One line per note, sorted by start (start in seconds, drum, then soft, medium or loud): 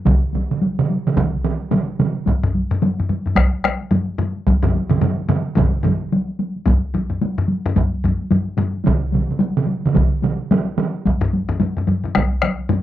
0.05 taiko loud
0.05 taiko mid medium
0.05 taiko high medium
0.33 taiko mid medium
0.33 taiko high soft
0.51 taiko mid medium
0.51 taiko high soft
0.62 taiko high medium
0.78 taiko mid medium
0.78 taiko high soft
0.90 taiko high medium
1.06 taiko mid medium
1.06 taiko high soft
1.16 taiko loud
1.16 taiko mid medium
1.16 taiko high medium
1.33 taiko high soft
1.45 taiko mid medium
1.60 taiko high soft
1.71 taiko mid loud
1.71 taiko high medium
1.88 taiko high soft
1.99 taiko mid medium
1.99 taiko high medium
2.15 taiko high soft
2.26 taiko medium
2.26 taiko high medium
2.44 taiko low-mid loud
2.54 taiko high soft
2.71 taiko low-mid medium
2.71 taiko high soft
2.82 taiko low-mid medium
2.82 taiko high medium
2.98 taiko low-mid medium
2.98 taiko high soft
3.09 taiko low-mid medium
3.09 taiko high medium
3.26 taiko low-mid medium
3.26 taiko high soft
3.36 taiko rim medium
3.36 taiko medium
3.36 taiko high medium
3.53 taiko high soft
3.64 taiko rim medium
3.64 taiko high medium
3.81 taiko high soft
3.91 taiko low-mid medium
3.91 taiko high medium
4.09 taiko high soft
4.19 taiko low-mid loud
4.19 taiko high medium
4.36 taiko high soft
4.47 taiko loud
4.47 taiko high medium
4.63 taiko low-mid loud
4.63 taiko mid loud
4.63 taiko high medium
4.75 taiko high soft
4.90 taiko low-mid medium
4.90 taiko mid loud
4.90 taiko high soft
5.01 taiko low-mid loud
5.01 taiko mid medium
5.01 taiko high medium
5.19 taiko high soft
5.29 taiko low-mid loud
5.29 taiko mid loud
5.29 taiko high medium
5.46 taiko high soft
5.56 taiko loud
5.56 taiko low-mid medium
5.56 taiko mid loud
5.56 taiko high medium
5.73 taiko high soft
5.83 taiko low-mid medium
5.83 taiko mid medium
5.83 taiko high medium
6.01 taiko high soft
6.12 taiko high medium
6.29 taiko high soft
6.39 taiko high medium
6.56 taiko high soft
6.66 taiko loud
6.66 taiko low-mid loud
6.66 taiko high medium
6.94 taiko low-mid medium
6.94 taiko high soft
7.10 taiko low-mid medium
7.10 taiko high soft
7.21 taiko high medium
7.38 taiko low-mid medium
7.38 taiko high soft
7.48 taiko high medium
7.65 taiko low-mid loud
7.65 taiko high soft
7.76 taiko medium
7.76 taiko low-mid medium
7.76 taiko high medium
7.94 taiko high soft
8.04 taiko low-mid medium
8.04 taiko high medium
8.20 taiko high soft
8.31 taiko low-mid medium
8.31 taiko high medium
8.47 taiko high soft
8.57 taiko low-mid loud
8.57 taiko high medium
8.73 taiko high soft
8.84 taiko loud
8.84 taiko mid loud
8.84 taiko high medium
9.12 taiko mid medium
9.12 taiko high medium
9.29 taiko mid medium
9.29 taiko high soft
9.39 taiko high medium
9.55 taiko mid medium
9.55 taiko high soft
9.67 taiko high medium
9.83 taiko mid loud
9.83 taiko high soft
9.95 taiko medium
9.95 taiko mid medium
9.95 taiko high medium
10.12 taiko high soft
10.22 taiko mid medium
10.22 taiko high medium
10.39 taiko high soft
10.51 taiko mid loud
10.51 taiko high medium
10.67 taiko high soft
10.78 taiko mid medium
10.78 taiko high medium
10.94 taiko high soft
11.05 taiko medium
11.05 taiko high medium
11.21 taiko low-mid loud
11.33 taiko high medium
11.49 taiko low-mid loud
11.49 taiko high soft
11.60 taiko low-mid medium
11.60 taiko high medium
11.77 taiko low-mid medium
11.77 taiko high soft
11.87 taiko low-mid medium
11.87 taiko high medium
12.04 taiko low-mid medium
12.04 taiko high soft
12.15 taiko rim medium
12.15 taiko loud
12.15 taiko high medium
12.33 taiko high soft
12.42 taiko rim medium
12.42 taiko high medium
12.59 taiko high soft
12.69 taiko low-mid medium
12.69 taiko high medium